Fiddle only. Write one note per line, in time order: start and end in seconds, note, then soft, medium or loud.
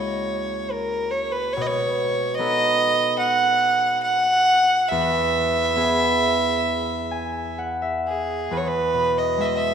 0.00 0.73 C#5 medium
0.72 1.13 A#4 medium
1.11 1.34 C#5 medium
1.32 1.55 B4 medium
1.53 1.63 C#5 medium
1.61 1.68 D#5 medium
1.67 2.36 C#5 loud
2.35 3.18 D#5 loud
3.18 4.01 F#5 loud
4.03 4.90 F#5 loud
4.89 7.57 E5 loud
8.08 8.54 G#4 medium
8.53 8.59 B4 medium
8.57 8.69 C#5 medium
8.67 9.20 B4 medium
9.18 9.42 D#5 medium
9.41 9.57 D#5 medium
9.41 9.46 E5 medium
9.56 9.74 E5 medium